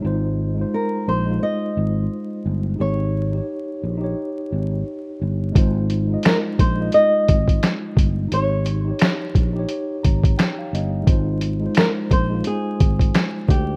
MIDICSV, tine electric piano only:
0, 0, Header, 1, 2, 480
1, 0, Start_track
1, 0, Key_signature, -4, "major"
1, 0, Tempo, 689655
1, 28, Time_signature, 4, 2, 24, 8
1, 9580, End_track
2, 0, Start_track
2, 0, Title_t, "Tine electric piano"
2, 0, Program_c, 0, 4
2, 0, Control_c, 0, 64, 127
2, 2, Note_on_c, 0, 56, 86
2, 16, Note_on_c, 0, 63, 87
2, 32, Note_on_c, 0, 65, 75
2, 38, Control_c, 0, 64, 0
2, 45, Note_on_c, 0, 72, 109
2, 142, Control_c, 0, 64, 127
2, 361, Note_off_c, 0, 56, 0
2, 368, Note_off_c, 0, 63, 0
2, 376, Note_off_c, 0, 65, 0
2, 381, Note_on_c, 0, 56, 72
2, 382, Note_off_c, 0, 72, 0
2, 397, Note_on_c, 0, 63, 67
2, 410, Note_on_c, 0, 65, 65
2, 427, Note_on_c, 0, 72, 89
2, 826, Note_off_c, 0, 56, 0
2, 834, Note_off_c, 0, 63, 0
2, 840, Note_off_c, 0, 65, 0
2, 849, Note_off_c, 0, 72, 0
2, 874, Note_on_c, 0, 56, 80
2, 888, Note_on_c, 0, 63, 71
2, 903, Note_on_c, 0, 65, 70
2, 917, Note_on_c, 0, 72, 89
2, 1742, Note_off_c, 0, 56, 0
2, 1749, Note_off_c, 0, 63, 0
2, 1757, Note_off_c, 0, 65, 0
2, 1764, Note_off_c, 0, 72, 0
2, 1921, Note_on_c, 0, 63, 72
2, 1942, Note_on_c, 0, 67, 71
2, 1956, Control_c, 0, 64, 0
2, 1964, Note_on_c, 0, 73, 80
2, 2071, Control_c, 0, 64, 127
2, 2280, Note_off_c, 0, 63, 0
2, 2291, Note_off_c, 0, 67, 0
2, 2302, Note_off_c, 0, 73, 0
2, 2308, Note_on_c, 0, 63, 72
2, 2329, Note_on_c, 0, 67, 62
2, 2351, Note_on_c, 0, 73, 78
2, 2749, Note_off_c, 0, 63, 0
2, 2760, Note_off_c, 0, 67, 0
2, 2767, Note_on_c, 0, 63, 94
2, 2771, Note_off_c, 0, 73, 0
2, 2792, Note_on_c, 0, 67, 78
2, 2811, Note_on_c, 0, 73, 99
2, 3648, Note_off_c, 0, 63, 0
2, 3661, Note_off_c, 0, 67, 0
2, 3670, Note_off_c, 0, 73, 0
2, 3842, Note_on_c, 0, 56, 92
2, 3855, Note_on_c, 0, 63, 82
2, 3871, Note_on_c, 0, 65, 84
2, 3876, Control_c, 0, 64, 0
2, 3886, Note_on_c, 0, 72, 104
2, 3984, Control_c, 0, 64, 127
2, 4201, Note_off_c, 0, 56, 0
2, 4208, Note_off_c, 0, 63, 0
2, 4215, Note_off_c, 0, 65, 0
2, 4223, Note_off_c, 0, 72, 0
2, 4227, Note_on_c, 0, 56, 73
2, 4244, Note_on_c, 0, 63, 64
2, 4258, Note_on_c, 0, 65, 67
2, 4272, Note_on_c, 0, 75, 84
2, 4669, Note_off_c, 0, 56, 0
2, 4677, Note_off_c, 0, 63, 0
2, 4685, Note_off_c, 0, 65, 0
2, 4691, Note_off_c, 0, 75, 0
2, 4701, Note_on_c, 0, 56, 70
2, 4714, Note_on_c, 0, 63, 75
2, 4730, Note_on_c, 0, 65, 69
2, 4744, Note_on_c, 0, 75, 88
2, 5576, Note_off_c, 0, 56, 0
2, 5582, Note_off_c, 0, 63, 0
2, 5590, Note_off_c, 0, 65, 0
2, 5597, Note_off_c, 0, 75, 0
2, 5766, Note_on_c, 0, 63, 76
2, 5788, Note_on_c, 0, 67, 72
2, 5797, Control_c, 0, 64, 0
2, 5808, Note_on_c, 0, 73, 84
2, 5898, Control_c, 0, 64, 127
2, 6123, Note_off_c, 0, 63, 0
2, 6134, Note_off_c, 0, 67, 0
2, 6144, Note_off_c, 0, 73, 0
2, 6156, Note_on_c, 0, 63, 73
2, 6177, Note_on_c, 0, 67, 67
2, 6200, Note_on_c, 0, 73, 79
2, 6593, Note_off_c, 0, 63, 0
2, 6604, Note_off_c, 0, 67, 0
2, 6615, Note_off_c, 0, 73, 0
2, 6632, Note_on_c, 0, 63, 86
2, 6653, Note_on_c, 0, 67, 86
2, 6676, Note_on_c, 0, 73, 93
2, 6983, Note_on_c, 0, 82, 68
2, 7209, Note_off_c, 0, 82, 0
2, 7221, Note_on_c, 0, 79, 76
2, 7358, Note_off_c, 0, 79, 0
2, 7368, Note_on_c, 0, 77, 69
2, 7459, Note_off_c, 0, 77, 0
2, 7478, Note_on_c, 0, 75, 72
2, 7501, Note_off_c, 0, 63, 0
2, 7512, Note_off_c, 0, 67, 0
2, 7523, Note_off_c, 0, 73, 0
2, 7676, Note_on_c, 0, 56, 93
2, 7692, Note_on_c, 0, 63, 82
2, 7696, Note_off_c, 0, 75, 0
2, 7706, Note_on_c, 0, 65, 79
2, 7717, Control_c, 0, 64, 0
2, 7721, Note_on_c, 0, 72, 101
2, 7853, Control_c, 0, 64, 127
2, 8038, Note_off_c, 0, 56, 0
2, 8046, Note_off_c, 0, 63, 0
2, 8053, Note_off_c, 0, 65, 0
2, 8061, Note_off_c, 0, 72, 0
2, 8074, Note_on_c, 0, 56, 77
2, 8088, Note_on_c, 0, 63, 71
2, 8102, Note_on_c, 0, 65, 62
2, 8118, Note_on_c, 0, 72, 81
2, 8512, Note_off_c, 0, 56, 0
2, 8520, Note_off_c, 0, 63, 0
2, 8526, Note_off_c, 0, 65, 0
2, 8534, Note_off_c, 0, 72, 0
2, 8560, Note_on_c, 0, 56, 76
2, 8575, Note_on_c, 0, 63, 68
2, 8590, Note_on_c, 0, 65, 75
2, 8604, Note_on_c, 0, 72, 80
2, 9425, Note_off_c, 0, 56, 0
2, 9433, Note_off_c, 0, 63, 0
2, 9440, Note_off_c, 0, 65, 0
2, 9447, Note_off_c, 0, 72, 0
2, 9580, End_track
0, 0, End_of_file